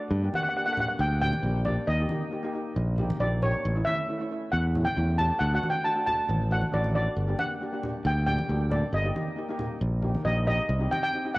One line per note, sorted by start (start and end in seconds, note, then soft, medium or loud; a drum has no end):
0.00 0.35 D5 medium
0.11 0.28 G2 medium
0.22 0.29 A#3 medium
0.22 0.29 D4 medium
0.22 0.30 G4 medium
0.33 0.47 A#3 medium
0.33 0.47 D4 medium
0.33 0.48 G4 medium
0.33 0.42 F#5 medium
0.33 high conga medium
0.43 0.48 F#5 medium
0.49 0.56 F#5 medium
0.56 0.63 A#3 medium
0.56 0.63 D4 medium
0.56 0.63 G4 medium
0.56 0.64 F#5 medium
0.66 0.74 A#3 medium
0.66 0.74 D4 medium
0.66 0.75 A4 medium
0.66 0.72 F#5 medium
0.73 0.79 F#5 medium
0.77 1.05 A#3 medium
0.77 1.05 D4 medium
0.77 1.06 G4 medium
0.77 0.87 F#5 medium
0.77 low conga medium
0.89 0.94 F#5 medium
0.99 1.33 D2 medium
0.99 1.20 G5 medium
1.22 1.35 A#3 medium
1.22 1.36 D4 medium
1.22 1.36 G4 medium
1.22 1.67 G5 loud
1.22 low conga medium
1.33 high conga medium
1.43 1.76 A#1 medium
1.43 1.58 A#3 medium
1.43 1.58 D4 medium
1.43 1.58 G4 medium
1.65 1.86 A#3 medium
1.65 1.87 D4 medium
1.65 1.87 G4 medium
1.65 1.88 D5 medium
1.65 low conga medium
1.87 2.04 D#2 medium
1.87 2.50 D#5 medium
1.99 2.06 A#3 medium
1.99 2.06 D#4 medium
1.99 2.07 G4 medium
2.09 2.24 A#3 medium
2.09 2.24 D#4 medium
2.09 2.24 G4 medium
2.09 high conga medium
2.31 2.38 A#3 medium
2.31 2.39 D#4 medium
2.31 2.39 G4 medium
2.43 2.50 A#3 medium
2.43 2.50 D#4 medium
2.43 2.50 G4 loud
2.53 2.80 A#3 medium
2.53 2.81 D#4 medium
2.53 2.81 G4 medium
2.76 3.09 A#1 medium
2.98 3.12 A#3 medium
2.98 3.12 D#4 medium
2.98 3.12 G4 medium
2.98 low conga medium
3.10 high conga medium
3.20 3.53 A#1 medium
3.20 3.34 A#3 medium
3.20 3.34 D#4 medium
3.20 3.35 G4 medium
3.20 3.43 D5 medium
3.42 3.62 A#3 medium
3.42 3.63 D#4 medium
3.42 3.63 G4 medium
3.42 3.83 C#5 medium
3.42 low conga medium
3.65 3.81 A1 loud
3.75 3.82 A3 medium
3.75 3.82 C#4 medium
3.75 3.83 E4 medium
3.85 3.99 A3 medium
3.85 4.00 C#4 medium
3.85 4.00 E4 medium
3.85 4.26 E5 medium
3.85 high conga medium
4.08 4.15 A3 medium
4.08 4.15 C#4 medium
4.08 4.16 E4 medium
4.19 4.26 A3 medium
4.19 4.26 C#4 medium
4.19 4.27 E4 medium
4.31 4.57 A3 medium
4.31 4.57 C#4 medium
4.31 4.58 E4 medium
4.52 4.86 E2 medium
4.52 4.86 F#5 medium
4.75 4.88 A3 medium
4.75 4.88 C#4 medium
4.75 4.89 E4 medium
4.75 low conga medium
4.85 5.19 G5 medium
4.85 high conga medium
4.96 5.30 E2 medium
4.96 5.10 A3 medium
4.96 5.10 C#4 medium
4.96 5.10 E4 medium
5.18 5.38 A3 medium
5.18 5.39 C#4 medium
5.18 5.39 G4 medium
5.18 5.41 A5 loud
5.18 low conga medium
5.39 5.57 D2 loud
5.39 5.53 F#5 medium
5.51 5.58 A3 medium
5.51 5.59 D4 medium
5.51 5.59 F#4 medium
5.51 5.70 F#5 medium
5.63 5.76 A3 medium
5.63 5.76 D4 medium
5.63 5.77 F#4 medium
5.63 high conga medium
5.70 5.85 G5 medium
5.84 5.91 A3 medium
5.84 5.91 D4 medium
5.84 5.92 F#4 medium
5.84 6.05 A5 loud
5.95 6.02 A3 medium
5.95 6.02 D4 medium
5.95 6.02 F#4 medium
6.06 6.33 A3 medium
6.06 6.33 D4 medium
6.06 6.34 F#4 medium
6.06 6.52 A5 loud
6.06 low conga medium
6.28 6.62 A1 medium
6.28 high conga medium
6.50 6.64 A3 medium
6.50 6.64 D4 medium
6.50 6.65 F#4 medium
6.50 6.74 F#5 medium
6.50 low conga medium
6.61 high conga medium
6.72 7.06 A1 medium
6.72 6.86 A3 medium
6.72 6.86 D4 medium
6.72 6.86 F#4 medium
6.72 6.94 D5 medium
6.84 high conga medium
6.94 7.14 A3 medium
6.94 7.15 D4 medium
6.94 7.15 F#4 medium
6.94 7.40 D5 medium
7.16 7.33 G1 medium
7.27 7.34 A#3 medium
7.27 7.35 D4 medium
7.27 7.35 G4 medium
7.39 7.52 A#3 medium
7.39 7.52 D4 medium
7.39 7.53 G4 medium
7.39 8.07 F#5 medium
7.39 high conga medium
7.61 7.67 A#3 medium
7.61 7.68 D4 medium
7.61 7.69 G4 medium
7.72 7.79 A#3 medium
7.72 7.79 D4 medium
7.72 7.80 G4 medium
7.83 8.09 A#3 medium
7.83 8.10 D4 medium
7.83 8.10 G4 medium
7.83 low conga medium
8.05 8.38 D2 medium
8.05 8.25 G5 medium
8.26 8.40 A#3 medium
8.26 8.41 D4 medium
8.26 8.41 G4 medium
8.26 8.72 G5 medium
8.26 low conga medium
8.39 high conga medium
8.49 8.82 D2 medium
8.49 8.62 A#3 medium
8.49 8.63 D4 medium
8.49 8.63 G4 medium
8.70 8.91 A#3 medium
8.70 8.91 D4 medium
8.70 8.92 A4 medium
8.70 8.94 D5 medium
8.70 low conga medium
8.93 9.10 G1 medium
8.93 9.56 D#5 medium
9.04 9.11 A#3 medium
9.04 9.11 D#4 medium
9.04 9.12 G4 medium
9.15 9.29 A#3 medium
9.15 9.29 D#4 medium
9.15 9.29 G4 medium
9.15 high conga medium
9.36 9.44 A#3 medium
9.36 9.44 D#4 medium
9.36 9.45 G4 medium
9.49 9.55 A#3 medium
9.49 9.56 D#4 medium
9.49 9.56 G4 loud
9.58 9.86 A#3 medium
9.58 9.86 D#4 medium
9.58 9.87 G4 medium
9.58 low conga medium
9.81 10.15 A#1 medium
10.02 10.16 A#3 medium
10.02 10.17 D#4 medium
10.02 10.17 G4 medium
10.02 low conga medium
10.15 high conga medium
10.24 10.58 A#1 medium
10.24 10.38 A#3 medium
10.24 10.39 D#4 medium
10.24 10.39 G4 medium
10.24 10.46 D#5 medium
10.46 10.67 A#3 medium
10.46 10.67 D#4 medium
10.46 10.67 G4 medium
10.46 10.89 D#5 loud
10.46 low conga medium
10.69 10.86 C2 loud
10.79 10.86 C4 medium
10.79 10.87 D#4 medium
10.79 10.87 G4 medium
10.90 11.05 C4 medium
10.90 11.05 D#4 medium
10.90 11.06 G4 medium
10.90 11.02 G5 medium
10.90 high conga medium
11.03 11.37 G5 loud
11.13 11.20 C4 medium
11.13 11.21 D#4 medium
11.13 11.21 G4 medium
11.24 11.31 C4 medium
11.24 11.32 D#4 medium
11.24 11.32 G4 medium
11.34 11.38 F#5 loud